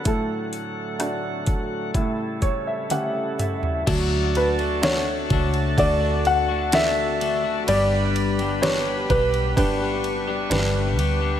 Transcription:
Already playing: D3 A4 F#5
0.05 A2 F#3 A3 A4, kick, closed hi-hat
0.53 closed hi-hat
0.99 A3 D4 F#4, cross-stick, closed hi-hat
1.46 kick, closed hi-hat
1.94 A2 C#3 G3 E4, kick, closed hi-hat
2.42 C#5, kick, closed hi-hat
2.67 E5
2.90 A3 C#4 G4 F#5, closed hi-hat, high tom
3.39 E5, closed hi-hat, mid tom
3.63 floor tom
3.87 D2 D3 F#3 A3 D4 F#4 A4 A5, kick, crash, ride
4.35 B4, ride
4.59 A3 D4 F#4, ride
4.82 D3 A3 D4 F#4 C#5, snare, ride
5.07 A3 D4 F#4
5.30 C#2 A3 D4 F#4, kick, ride
5.54 ride
5.77 D2 D3 A3 D4 F#4 D5, kick, ride
6.00 A3 D4 F#4
6.25 F#5, ride
6.48 A3 D4 F#4
6.72 D3 A3 D4 F#4 E5, snare, ride
7.20 D3 A3 D4 F#4, ride
7.44 A3 D4 F#4
7.67 G1 G2 D3 G3 B3 D4 G4 B4 D5 B5, ride
8.16 ride
8.39 G3 B3 D4 G4, ride
8.61 G2 D3 G3 B3 D4 G4 B4 C#5, snare, ride
8.86 G3 B3 D4 G4
9.09 B1 G3 B3 D4 G4 B4, kick, ride
9.34 ride
9.57 G1 G3 B3 D4 G4 B4 C#6, kick, ride
9.80 G3 B3 D4 G4
10.04 ride
10.27 G3 B3 D4 G4
10.50 G1 G2 D3 G3 B3 D4 G4 B4, snare, ride
10.97 D2 G3 B3 D4 G4, ride
11.21 G3 B3 D4 G4

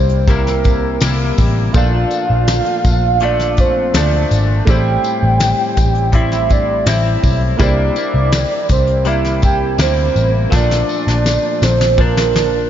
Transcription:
Already playing: C2 C3 G3 A#3 E4 G4 C5
0.09 closed hi-hat
0.27 C3 G3 A#3 E4 A#4, kick, closed hi-hat, tambourine
0.47 snare
0.64 kick, closed hi-hat, tambourine
1.01 C2 C3 G3 A#3 E4, snare, closed hi-hat, tambourine
1.38 A1, kick, open hi-hat, tambourine
1.72 A#1 A#2 F3 A#3 F4 A4, kick, closed hi-hat, tambourine
1.76 A3 D4 D5 F5
2.11 closed hi-hat, tambourine
2.30 A#1
2.47 snare, closed hi-hat, tambourine
2.66 closed hi-hat
2.84 A#1, kick, closed hi-hat, tambourine
3.20 A#2 F3 A3 D4, closed hi-hat
3.25 D5
3.40 snare
3.57 C5, kick, closed hi-hat, tambourine
3.94 D2 A#2 F3 A3 D4 D5, snare, closed hi-hat, tambourine
4.31 G#1, closed hi-hat, tambourine
4.65 A1 A2 G3 A3 E4 G4, kick, closed hi-hat, tambourine
4.70 C4 E4 C5 G5
5.04 closed hi-hat, tambourine
5.23 A1
5.40 snare, closed hi-hat, tambourine
5.77 A1, kick, closed hi-hat, tambourine
5.95 closed hi-hat
6.12 A2 G3 C4 E4 E5, kick, closed hi-hat
6.32 snare
6.49 D5, kick, closed hi-hat, tambourine
6.86 A1 A2 G3 C4 E4 E5, snare, closed hi-hat, tambourine
7.23 B1, kick, open hi-hat, tambourine
7.57 C2 C3 G3 A#3 E4 G4, kick, closed hi-hat, tambourine
7.61 C5 D5
7.96 G3 A#3 E4, closed hi-hat, tambourine
8.14 C2
8.32 snare, closed hi-hat, tambourine
8.51 closed hi-hat
8.69 C2 C5, kick, closed hi-hat, tambourine
8.87 closed hi-hat
9.05 C3 G3 A#3 E4 E5, closed hi-hat, tambourine
9.25 snare
9.42 G5, kick, closed hi-hat, tambourine
9.78 D2 C3 G3 A#3 E4 C5, snare, closed hi-hat, tambourine
10.16 A1, closed hi-hat, tambourine
10.49 A#1 A#2 F3 A3 A#3 F4 A5, kick, snare, tambourine
10.54 D4 D5
10.71 snare
10.89 tambourine
11.07 A#1, snare
11.26 snare, tambourine
11.62 A#1 C5, snare, tambourine
11.81 snare
11.98 A#2 F3 D4 A#4, kick
12.17 snare
12.36 snare

